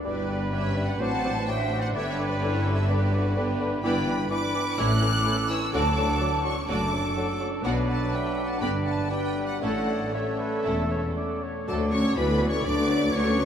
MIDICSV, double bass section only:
0, 0, Header, 1, 2, 480
1, 0, Start_track
1, 0, Tempo, 473560
1, 46, Time_signature, 4, 2, 24, 8
1, 4845, Tempo, 479233
1, 8685, Tempo, 510638
1, 11565, Tempo, 482703
1, 13327, End_track
2, 0, Start_track
2, 0, Title_t, "Double bass section"
2, 0, Program_c, 0, 48
2, 45, Note_on_c, 0, 31, 73
2, 973, Note_off_c, 0, 31, 0
2, 1014, Note_on_c, 0, 33, 67
2, 1962, Note_off_c, 0, 33, 0
2, 1986, Note_on_c, 0, 31, 76
2, 3879, Note_off_c, 0, 31, 0
2, 3891, Note_on_c, 0, 31, 80
2, 4285, Note_off_c, 0, 31, 0
2, 4851, Note_on_c, 0, 33, 87
2, 5245, Note_off_c, 0, 33, 0
2, 5802, Note_on_c, 0, 38, 91
2, 6200, Note_off_c, 0, 38, 0
2, 6752, Note_on_c, 0, 30, 81
2, 7156, Note_off_c, 0, 30, 0
2, 7713, Note_on_c, 0, 35, 81
2, 8119, Note_off_c, 0, 35, 0
2, 8682, Note_on_c, 0, 31, 77
2, 9072, Note_off_c, 0, 31, 0
2, 9636, Note_on_c, 0, 33, 74
2, 10047, Note_off_c, 0, 33, 0
2, 10604, Note_on_c, 0, 28, 73
2, 11008, Note_off_c, 0, 28, 0
2, 11570, Note_on_c, 0, 38, 88
2, 11991, Note_off_c, 0, 38, 0
2, 12053, Note_on_c, 0, 38, 88
2, 12469, Note_off_c, 0, 38, 0
2, 12531, Note_on_c, 0, 38, 88
2, 12950, Note_off_c, 0, 38, 0
2, 13007, Note_on_c, 0, 38, 86
2, 13327, Note_off_c, 0, 38, 0
2, 13327, End_track
0, 0, End_of_file